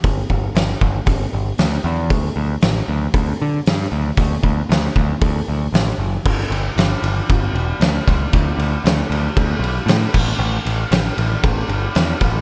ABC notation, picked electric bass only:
X:1
M:4/4
L:1/8
Q:1/4=116
K:Glyd
V:1 name="Picked electric bass" clef=bass
G,,, G,,, G,,, G,,, G,,, G,,, D,, E,, | D,, D,, A,,, D,, D,, D, G,, D,, | D,, D,, D,, D,, D,, D,, A,,, F,,, | G,,, G,,, G,,, G,,, G,,, E,,, D,, C,, |
D,, D,, D,, D,, D,, B,,, A,, A,,, | A,,, A,,, A,,, A,,, A,,, G,,, E,, A,,, |]